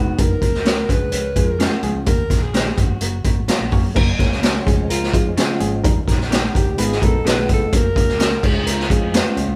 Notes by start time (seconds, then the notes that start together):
Already playing: F1 B3 D#4 F#4
0.17 F#1 F#3 A#3 C#4 A#4, kick, closed hi-hat, muted conga
0.40 C#2 F#3 A#3 C#4 A#4, kick, closed hi-hat
0.54 snare
0.65 F#3 A#3 C#4 F#4 A#4 C#5, snare, closed hi-hat, high conga
0.89 C#2 F3 G#3 C#4 G#4 B4, kick, closed hi-hat, low conga
1.12 C#2 A#4 C#5, closed hi-hat, muted conga
1.36 F2 F3 G#3 C#4 F4 G#4 A#4, kick, closed hi-hat, muted conga
1.59 F3 G#3 C#4 F4 G#4 C#5, snare, closed hi-hat, high conga
1.83 C#2 F3 G#3 C#4 G#4, closed hi-hat, high conga
1.94 C#2
2.06 D#2 D#3 A#3 C#4 G4 A#4, kick, closed hi-hat, muted conga
2.30 A#1 D#3 A#3 C#4 A#4, kick, snare, closed hi-hat
2.43 G#4
2.54 D#3 A#3 C#4 D#4 G4 C#5, snare, closed hi-hat, high conga
2.76 G1 D#3 A#3 C#4 F#4 G4, kick, closed hi-hat, low conga
3.01 F#1 F#3 A#3 C#4 A#4, closed hi-hat
3.24 F#3 A#3 C#4 A#4, kick, closed hi-hat, muted conga
3.36 G#1
3.48 F#3 A#3 C#4 F4 F#4 A#4 C#5, muted fingered electric bass stroke, snare, closed hi-hat, high conga
3.60 A#1
3.71 F#2 F#3 A#3 C#4 C#5, kick, open hi-hat, high conga
3.95 F#1 F#3 A#3 C#4 A#4, kick, crash, muted conga
4.19 C#2 F#3 A#3 C#4 A#4, kick, snare, closed hi-hat
4.32 snare
4.42 F#3 A#3 C#4 F#4 A#4 C#5, snare, closed hi-hat, high conga
4.65 C#2 F3 G#3 C#4 G#4, kick, closed hi-hat
4.90 C#2 F4 A#4, closed hi-hat
5.03 snare
5.13 F2 F3 G#3 C#4 D#4 F4 G#4, kick, closed hi-hat, muted conga
5.37 C#3 F3 G#3 C#4 F4 G#4 C#5, snare, closed hi-hat, high conga
5.60 G#1 F3 G#3 C#4 G#4, closed hi-hat, high conga
5.83 D#2 D#3 G3 C#4 D#4 A#4, kick, closed hi-hat, muted conga
6.07 A#1 G3 C#4 D#4 A#4, kick, snare, closed hi-hat
6.21 snare
6.30 G3 A#3 C#4 D#4 G4 A#4 C#5, snare, closed hi-hat, high conga
6.54 C#2 G3 C#4 D#4 G4 A#4, kick, closed hi-hat
6.78 G#1 G#3 B3 D#4 F4 G#4 B4, closed hi-hat
6.91 snare
7.01 A#1 G#3 B3 D#4 F#4 A4 A#4 B4, kick, closed hi-hat, muted conga
7.25 B1 G#3 B3 D#4 F4 G#4 B4, snare, closed hi-hat, high conga
7.49 F1 G#3 B3 D#4 B4, kick, closed hi-hat, high conga
7.53 A4
7.72 F#1 A#3 C#4 F#4 C#5, kick, closed hi-hat, muted conga
7.76 A#4
7.96 C#2 A#3 C#4 F#4 C#5, kick, closed hi-hat
8.09 snare
8.19 A#3 C#4 F#4 A#4 C#5, snare, closed hi-hat, high conga
8.43 C#2 F3 G#3 C#4 F4 G#4 C#5, kick, crash
8.66 C#2 A#4, closed hi-hat, muted conga
8.71 F4
8.80 snare
8.90 F2 G#3 C#4 F4 G#4 C#5, kick, closed hi-hat, muted conga
9.13 G#3 C#4 F4 G#4 B4 C#5 D#5, snare, closed hi-hat, high conga
9.36 C#2 G#3 C#4 F4 C#5, closed hi-hat, high conga
9.49 C#2